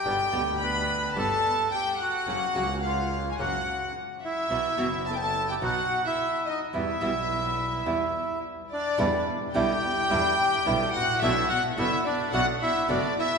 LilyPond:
<<
  \new Staff \with { instrumentName = "Violin section" } { \time 4/4 \key e \minor \tempo 4 = 108 g''4 b''4 a''4 g''8 fis''8~ | fis''4 f''8.~ f''32 gis''32 fis''4 r8 e''8~ | e''4 a''32 g''32 a''8 g''16 fis''8. e''8. dis''8 | e''2. r8 d''8~ |
d''8 r8 g''2~ g''8 fis''8 | e''8 fis''8 e''8 d''8 fis''8 e''8 d''8 e''8 | }
  \new Staff \with { instrumentName = "Bandoneon" } { \time 4/4 \key e \minor << { g''4 b''4 a''4 g''8 fis''8~ | fis''4 f''8.~ f''32 gis''32 fis''4 r8 e''8~ | e''4 a''32 g''32 a''8 g''16 fis''8. e''8. dis''8 | e''2. r8 d''8~ |
d''8 r8 g''2~ g''8 fis''8 | e''8 fis''8 e''8 d''8 fis''8 e''8 d''8 e''8 | } \\ { g'4 b'4 a'4 g'8 fis'8~ | fis'4 f'4 fis'4 r8 e'8~ | e'4 a'16 a'8 g'16 fis'8. e'8. dis'8 | e'2. r8 d'8~ |
d'8 r8 g'2~ g'8 fis'8 | e'8 fis'8 e'8 d'8 fis'8 e'8 d'8 e'8 | } >> }
  \new Staff \with { instrumentName = "Bandoneon" } { \time 4/4 \key e \minor <g b d'>8 <g b d'>4. <g b d'>8 r4. | <fis ais cis'>8 <fis ais cis'>4. <fis ais cis'>8 r4. | <fis b e'>8 <fis b e'>4. <fis b dis'>8 r4. | <g b e'>8 <g b e'>4. <g b e'>8 r4. |
<g d' e'>8 r8 <g d' e'>8 r8 <g d' e'>8 r8 <g d' e'>8 r8 | <a b d'>8 r8 <a b d'>8 r8 <a b d'>8 r8 <a b d'>8 r8 | }
  \new Staff \with { instrumentName = "Nylon-string guitar" } { \clef bass \time 4/4 \key e \minor <b, d g b g'>8 <b, d g b g'>8 r4 <b, d g b g'>8 r4. | <cis fis ais cis' fis'>8 <cis fis ais cis' fis'>8 r4 <cis fis ais cis' fis'>8 r4. | <b, e b e' fis'>8 <b, e b e' fis'>8 r4 <b, fis b dis' fis'>8 r4. | <b, e g b e'>8 <b, e g b e'>8 r4 <b, e g b e'>8 r4. |
<b, d g b e'>8 r8 <b, d g b e'>8 r8 <b, d g b e'>8 r8 <b, d g b e'>8 r8 | <b, d a b fis'>8 r8 <b, d a b fis'>8 r8 <b, d a b fis'>8 r8 <b, d a b fis'>8 r8 | }
  \new Staff \with { instrumentName = "Double bass" } { \clef bass \time 4/4 \key e \minor g,,8 d,4. g,,8 r4. | fis,,8 cis,4. fis,,8 r4. | b,,8 fis,,4. b,,8 r4. | e,8 b,,4. e,8 r4. |
e,8 r8 b,,8 r8 e,8 r8 b,,8 a,,8 | b,,8 r8 fis,,8 r8 b,,8 r8 fis,,8 r8 | }
>>